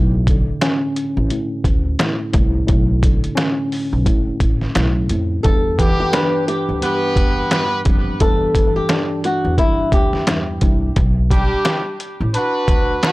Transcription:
Already playing: B1 A2
0.27 D3, kick, closed hi-hat
0.61 C#4, finger snap, snare, closed hi-hat
0.96 closed hi-hat
1.17 A1
1.30 A2, closed hi-hat
1.64 D2, kick, closed hi-hat
1.99 A2, finger snap, snare, closed hi-hat
2.32 C2 A2, kick, closed hi-hat
2.67 B1 A2, kick, closed hi-hat
3.03 D3, kick, closed hi-hat
3.24 closed hi-hat
3.35 C#4, finger snap, snare, closed hi-hat
3.72 open hi-hat
3.93 B1
4.06 A2, kick, closed hi-hat
4.40 A1, kick, closed hi-hat
4.61 snare
4.75 B1 A2, finger snap, snare, closed hi-hat
5.09 F2 A2, closed hi-hat
5.43 E2 G2 A4, kick, closed hi-hat
5.79 E3 B3 D4 G4, kick, closed hi-hat
6.00 G4
6.13 D4 B4, finger snap, snare, closed hi-hat
6.48 G4, closed hi-hat
6.69 D2
6.81 G2 B3 G4 B4, closed hi-hat
7.16 E2, kick, closed hi-hat
7.51 G2 B3 G4 B4, finger snap, snare, closed hi-hat
7.85 F2 G2, kick, closed hi-hat
8.20 E2 G2 A4, kick, closed hi-hat
8.55 E3, kick, closed hi-hat
8.76 G4
8.89 D4, finger snap, snare, closed hi-hat
9.24 F#4, closed hi-hat
9.45 E2
9.58 G2 E4, kick, closed hi-hat
9.92 D2 G4, kick, closed hi-hat
10.13 snare
10.27 E2 G2, finger snap, snare, closed hi-hat
10.61 C2 G2, kick, closed hi-hat
10.96 B1, kick, closed hi-hat
11.31 G3 D4 G4, kick, closed hi-hat
11.65 finger snap, snare, closed hi-hat
12.00 closed hi-hat
12.20 A1
12.34 D4 F#4 B4, closed hi-hat
12.68 D2, kick, closed hi-hat
13.03 D4 F#4 B4, finger snap, snare, closed hi-hat

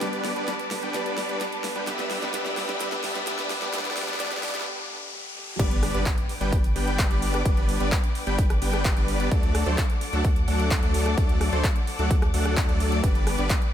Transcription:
Already playing: B3 G4 B4 D5 D6, riser
0.00 G1 G2 D3 G3 B3 D4 G4 B4 D5 A5, snare, closed hi-hat
0.13 closed hi-hat
0.25 snare, open hi-hat
0.36 G3 B3 D4 B4 D5, closed hi-hat
0.48 snare, closed hi-hat
0.59 closed hi-hat
0.71 G2 D3 G3 B3 B4, snare, open hi-hat
0.83 G1 G3 B3 D4 B4 G5
0.93 G1 G2 D3 G3 B3 D4 G4 B4 D5, snare, closed hi-hat
1.06 closed hi-hat
1.18 snare, open hi-hat
1.29 G1 G3 B3 D4 B4 D5, closed hi-hat
1.41 snare, closed hi-hat
1.52 closed hi-hat
1.64 G2 D3 G3 B3 B4, snare, open hi-hat
1.76 G2 G3 B3 D4 B4 G5, closed hi-hat
1.86 G2 D3 G3 B3 D4 G4 B4 D5 E5 G5 E6, snare, closed hi-hat
1.99 snare, closed hi-hat
2.11 snare, open hi-hat
2.22 G3 B3 D4 B4 D5, snare, closed hi-hat
2.33 G2 D3 G3 B3 D4 G4 B4 D5, snare, closed hi-hat
2.46 snare, closed hi-hat
2.57 snare, open hi-hat
2.69 G3 B3 D4 B4 D5, snare, closed hi-hat
2.79 G2 D3 G3 B3 D4 G4 B4 D5, snare, closed hi-hat
2.92 snare, closed hi-hat
3.04 snare, open hi-hat
3.15 G3 B3 D4 B4 D5, snare, closed hi-hat
3.26 G2 D3 G3 B3 D4 G4 B4 D5, snare, closed hi-hat
3.39 snare, closed hi-hat
3.50 snare, open hi-hat
3.62 G3 B3 D4 B4 D5, snare, closed hi-hat
3.72 G2 D3 G3 B3 D4 G4 B4 D5, snare, closed hi-hat
3.79 snare
3.85 snare, closed hi-hat
3.91 snare
3.96 G2 D3 G3 B3 D4 G4 B4 D5, snare, open hi-hat
4.02 snare
4.08 snare, closed hi-hat
4.14 snare
4.19 G2 D3 G3 B3 D4 G4 B4 D5, snare, closed hi-hat
4.26 snare
4.32 snare, closed hi-hat
4.37 snare
4.42 G2 D3 G3 B3 D4 G4 B4 D5, snare, open hi-hat
4.49 snare
4.55 snare, closed hi-hat
4.61 snare
4.65 G2 D3 G3 B3 G4
4.89 G2 D3 G3 B3 G4
5.12 G2 D3 G3 B3 G4
5.35 G2 D3 G3 B3 G4
5.59 G1 G3 B3 D4 B4 D5 G5 D6, kick, closed hi-hat, crash, impact
5.71 closed hi-hat
5.83 cross-stick, open hi-hat
5.94 G1 G3 B3 D4 B4 D5, closed hi-hat
6.06 kick, clap, closed hi-hat
6.18 closed hi-hat
6.29 open hi-hat
6.41 G1 G3 B3 D4 B4 G5, closed hi-hat
6.53 kick, closed hi-hat
6.64 closed hi-hat
6.76 G1 G3 B3 D4 B4 G5, open hi-hat
6.87 closed hi-hat
6.99 kick, clap, closed hi-hat
7.11 G1 G3 B3 D4 B4 D5, closed hi-hat
7.22 open hi-hat
7.34 cross-stick, closed hi-hat
7.46 G1 G3 B3 D4 B4 D5, kick, closed hi-hat
7.57 closed hi-hat
7.69 open hi-hat
7.80 G1 G3 B3 D4 B4 D5, closed hi-hat
7.92 kick, clap, closed hi-hat
8.04 closed hi-hat
8.15 open hi-hat
8.27 G1 G3 B3 D4 B4 G5, closed hi-hat
8.39 kick, closed hi-hat
8.50 cross-stick, closed hi-hat
8.62 G1 G3 B3 D4 B4 G5, open hi-hat
8.73 cross-stick, closed hi-hat
8.85 kick, clap, closed hi-hat
8.97 G1 G3 B3 D4 B4 D5, closed hi-hat
9.08 open hi-hat
9.20 closed hi-hat
9.31 D2 F#3 A3 D4 A4 D5 F#5, kick, closed hi-hat
9.43 closed hi-hat
9.55 cross-stick, open hi-hat
9.66 D2 F#3 A3 D4 A4 C5, closed hi-hat
9.78 kick, clap, closed hi-hat
9.90 closed hi-hat
10.01 open hi-hat
10.13 D2 F#3 A3 D4 A4 F#5, closed hi-hat
10.25 kick, closed hi-hat
10.36 closed hi-hat
10.48 D2 F#3 A3 D4 A4 F#5, open hi-hat
10.59 closed hi-hat
10.71 kick, clap, closed hi-hat
10.83 D2 F#3 A3 D4 A4 D5, closed hi-hat
10.94 open hi-hat
11.06 cross-stick, closed hi-hat
11.18 D2 F#3 A3 D4 A4 D5, kick, closed hi-hat
11.29 closed hi-hat
11.41 cross-stick, open hi-hat
11.52 D2 F#3 A3 D4 A4 C5, closed hi-hat
11.64 kick, clap, closed hi-hat
11.76 closed hi-hat
11.87 open hi-hat
11.99 D2 F#3 A3 D4 A4 F#5, closed hi-hat
12.11 kick, closed hi-hat
12.22 cross-stick, closed hi-hat
12.34 D2 F#3 A3 D4 A4 F#5, open hi-hat
12.46 cross-stick, closed hi-hat
12.57 kick, clap, closed hi-hat
12.69 D2 F#3 A3 D4 A4 D5, closed hi-hat
12.80 open hi-hat
12.92 closed hi-hat
13.04 G1 G3 B3 D4 B4 D5 G5, kick, closed hi-hat
13.15 closed hi-hat
13.27 cross-stick, open hi-hat
13.38 G1 G3 B3 D4 B4 D5, closed hi-hat
13.50 kick, clap, closed hi-hat
13.62 closed hi-hat

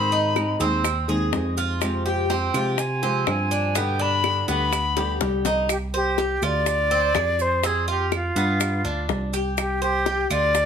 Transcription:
Already playing: G#2 D#3 G#3 C4 D#4 G#4 B5
0.12 D#4, maracas
0.36 G#3 C4 D#4 G#4, high bongo, claves, maracas
0.60 D#2 G#3 C4 D#4 G#4, high bongo, maracas
0.84 muted nylon-string guitar stroke, high bongo, claves, maracas
1.08 D#2 G#3 C4 D#4 G#4, maracas
1.32 F2 G#3 C4 D#4 G#4, high bongo, low bongo, maracas
1.57 F4, high bongo, maracas
1.81 C3 F3 G#3 C4 G4, high bongo, claves, maracas
2.06 G4 G5, maracas
2.30 F3 G#3 C4 G4, high bongo, maracas
2.54 C3 F3 G#3 C4 F4 G4, high bongo, claves, maracas
2.78 G#5, muted nylon-string guitar stroke, high bongo, maracas
3.03 F3 G#3 C4 G4, high bongo, maracas
3.27 G2 F3 C4 G#5, high bongo, low bongo, claves, maracas
3.51 D4, high bongo, maracas
3.75 B2 D3 G3 B3 G4 G5, high bongo, maracas
3.99 D4 B5, maracas
4.24 D3 G3 B3 G4, high bongo, claves, maracas
4.48 D2 D3 G3 B3 G4 B5, high bongo, maracas
4.73 muted nylon-string guitar stroke, high bongo, claves, maracas
4.97 D3 G3 B3 G4, high bongo, maracas
5.21 C2 D3 G3 B3 G4, low bongo, maracas
5.45 D#4, low bongo, maracas
5.69 G4, high bongo, claves, maracas
5.94 G4 C5, maracas
6.18 G4, high bongo, maracas
6.42 D2 F4 D5, high bongo, claves, maracas
6.66 high bongo, maracas
6.91 C4, high bongo, maracas
7.15 F2 G#4, high bongo, low bongo, claves, maracas
7.39 C5, high bongo, maracas
7.63 C4 G#4, high bongo, maracas
7.88 F4 G4, maracas
8.12 F4, high bongo, claves, maracas
8.36 G2 B3, high bongo, maracas
8.60 high bongo, claves, maracas
8.84 D2 D4, maracas
9.08 C2, high bongo, low bongo, maracas
9.33 G4, high bongo, maracas
9.57 G4, high bongo, claves, maracas
9.82 G4 C5, maracas
10.06 G4, high bongo, maracas
10.30 D2 F4 D5, high bongo, claves, maracas
10.55 high bongo, maracas

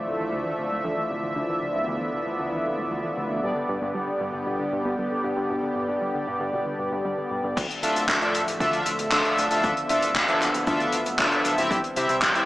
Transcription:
Already playing: D3 F3 A3 E4 F4 D5 E5
0.07 D1 D3
0.20 D1 E3
0.33 D2 D3
0.46 E3
0.59 D1 D3
0.71 D1 A3
0.84 D2 F3
0.97 E3
1.10 D1 D3
1.23 D1 E3
1.36 D2 D3 B3
1.49 E3
1.62 D1 D3
1.75 D1 A3
1.88 D2 F3
2.01 E3
2.14 D1 D3
2.26 D1 E3
2.39 D2 D3
2.52 E3
2.65 D1 D3
2.78 D1 A3
2.91 D2 F3
3.04 E3
3.17 D1 D3
3.30 D1 E3
3.43 G1 B2 G3 B3 D4 G4 D5
3.56 D3
3.69 G2 B2
3.82 G2 B3
3.95 G1 G3
4.07 D3
4.21 G2 B2
4.34 G2 D3
4.46 G1 B2
4.59 D3
4.72 G2 B2
4.85 G2 B3
4.98 G1 G3
5.11 D3
5.24 G2 B2
5.37 G2 D3
5.50 G1 B2
5.63 D3
5.76 G2 B2
5.89 G2 B3
6.01 G1 G3
6.15 D3
6.27 G2 B2
6.40 G2 D3
6.53 G1 B2
6.66 D3
6.79 G2 B2
6.92 G2 B3
7.05 G1 G3
7.18 D3
7.31 G2 B2
7.44 G2 D3
7.57 D2 D3 F3 A3 E5, kick, closed hi-hat, crash, cabasa
7.71 closed hi-hat
7.83 D1 D4 F4 A4 E5, closed hi-hat, cabasa
7.96 D1, closed hi-hat, cabasa
8.09 D2, kick, clap, closed hi-hat, cabasa
8.22 D4 F4 A4 E5, closed hi-hat
8.34 D1, closed hi-hat, cabasa
8.47 D1, closed hi-hat, cabasa
8.60 D2 D4 F4 A4 E5, kick, closed hi-hat, cabasa
8.73 closed hi-hat
8.86 D1, closed hi-hat, cabasa
8.99 D1, closed hi-hat, cabasa
9.11 D2 D4 F4 A4 E5, kick, clap, closed hi-hat, cabasa
9.25 closed hi-hat
9.38 D1, closed hi-hat, cabasa
9.51 D1 D4 F4 A4 E5, closed hi-hat, cabasa
9.64 D2 B3, kick, closed hi-hat, cabasa
9.77 closed hi-hat
9.89 D1 D4 F4 A4 E5, closed hi-hat, cabasa
10.02 D1, closed hi-hat, cabasa
10.15 D2, kick, clap, closed hi-hat, cabasa
10.28 D4 F4 A4 E5, closed hi-hat
10.41 D1, clap, closed hi-hat, cabasa
10.54 D1, closed hi-hat, cabasa
10.67 D2 D4 F4 A4 E5, kick, closed hi-hat, cabasa
10.80 closed hi-hat
10.92 D1, closed hi-hat, cabasa
11.06 D1, closed hi-hat, cabasa
11.19 D2 D4 F4 A4 E5, kick, clap, closed hi-hat, cabasa
11.32 closed hi-hat
11.45 D1, closed hi-hat, cabasa
11.58 D1 C4 E4 G4 E5, closed hi-hat, cabasa
11.71 C2 E3 G3 C4 G4, kick, closed hi-hat, cabasa
11.84 closed hi-hat
11.96 C3 C4 E4 G4 E5, closed hi-hat, cabasa
12.09 C3, closed hi-hat, cabasa
12.22 C2, kick, clap, closed hi-hat, cabasa
12.35 C4 E4 G4 E5, closed hi-hat

